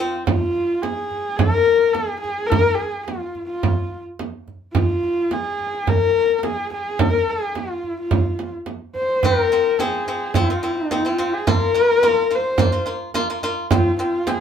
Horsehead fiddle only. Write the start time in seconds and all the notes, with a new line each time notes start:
Already playing: F4
0.27 F4
0.82 G#4
1.37 A#4
1.94 G#4
2.20 G#4
2.47 A#4
2.75 G#4
3.03 F4
3.46 F4
4.74 F4
5.33 G#4
5.89 A#4
6.38 A#4
6.45 G#4
6.73 G#4
7.00 A#4
7.30 G#4
7.58 F4
8.00 F4
8.96 C5
9.25 A#4
9.81 G#4
10.39 F4
10.77 D#4
10.96 F4
11.33 G#4
11.51 A#4
12.35 C5
13.73 F4
14.01 F4
14.27 G#4